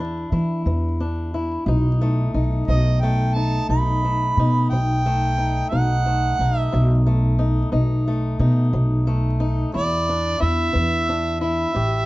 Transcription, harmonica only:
2.69 3.02 D#5 medium
3.01 3.36 G5 medium
3.35 3.68 A5 medium
3.69 4.66 B5 medium
4.70 5.67 G5 medium
5.69 6.58 F#5 medium
6.58 7.01 E5 medium
9.75 10.42 D5 loud
10.40 11.40 E5 loud
11.41 12.06 E5 medium

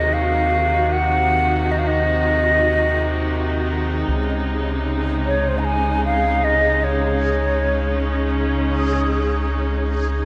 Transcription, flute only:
0.00 0.15 D#5 medium
0.13 0.94 F5 loud
0.92 1.73 F#5 loud
1.72 1.80 D#5 medium
1.79 1.89 F5 medium
1.87 3.69 D#5 medium
5.26 5.50 C#5 medium
5.48 5.60 C5 medium
5.59 5.66 A#5 medium
5.65 6.04 G#5 medium
6.05 6.46 F5 loud
6.44 6.85 D#5 medium
6.84 8.42 C#5 medium

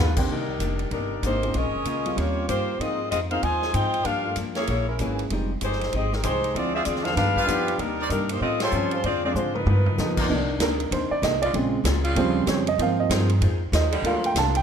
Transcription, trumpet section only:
6.74 6.82 F4 medium
6.74 6.82 G#4 medium
6.74 6.82 C5 medium
6.74 6.82 D5 medium
7.36 7.77 F4 medium
7.36 7.77 G4 medium
7.36 7.77 B4 medium
7.36 7.77 F5 medium
7.99 8.07 D#4 medium
7.99 8.07 A#4 medium
7.99 8.07 C5 medium
7.99 8.07 D5 medium
8.61 9.02 F4 medium
8.61 9.02 G4 medium
8.61 9.02 A4 medium
8.61 9.02 C6 medium
10.18 10.26 D#4 medium
10.18 10.26 A#4 medium
10.18 10.26 C5 medium
10.18 10.26 D5 medium

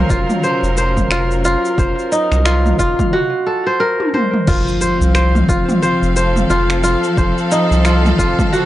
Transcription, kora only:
0.00 0.43 C5 medium
0.10 1.11 F4 medium
0.43 0.77 C5 medium
0.78 1.78 C5 medium
1.11 1.44 F4 medium
1.45 2.45 F4 medium
1.79 2.97 C5 medium
2.12 3.74 D#4 medium
2.46 2.79 F4 medium
2.79 3.19 F4 loud
3.13 4.53 F#4 loud
3.47 3.86 A4 medium
3.67 4.13 C5 medium
3.80 5.07 A#4 medium
4.14 4.81 C5 medium
4.47 5.48 F4 medium
4.81 5.14 C5 medium
5.15 5.82 C5 medium
5.49 6.50 F4 medium
5.82 6.16 C5 medium
6.16 7.17 C5 medium
6.50 6.83 F4 medium
6.84 7.85 F4 loud
7.17 8.36 C5 medium
7.52 8.65 D#4 medium
7.85 8.18 F4 medium
8.19 8.59 F4 loud
8.53 8.65 F#4 medium

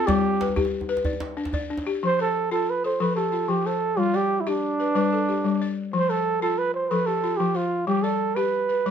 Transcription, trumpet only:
0.07 0.56 G4 medium
2.05 2.19 C5 medium
2.21 2.50 A4 medium
2.52 2.71 A4 medium
2.70 2.85 B4 medium
2.85 3.00 C5 medium
3.01 3.15 B4 medium
3.16 3.51 A4 medium
3.49 3.68 G4 medium
3.66 4.00 A4 medium
3.99 4.17 F4 medium
4.16 4.42 G4 medium
4.40 4.50 E4 medium
4.48 5.78 D4 medium
5.94 6.11 C5 medium
6.10 6.41 A4 medium
6.42 6.60 A4 medium
6.58 6.74 B4 medium
6.75 6.91 C5 medium
6.89 7.07 B4 medium
7.06 7.38 A4 medium
7.37 7.57 G4 medium
7.56 7.87 F4 medium
7.87 8.04 G4 medium
8.03 8.37 A4 medium
8.35 8.91 B4 medium

